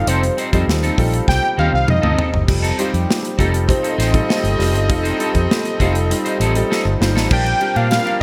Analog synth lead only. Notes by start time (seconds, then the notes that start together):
0.08 C5
1.29 G5
1.59 F5
1.75 F5
1.90 D#5
7.33 G5
7.76 F5
7.91 F5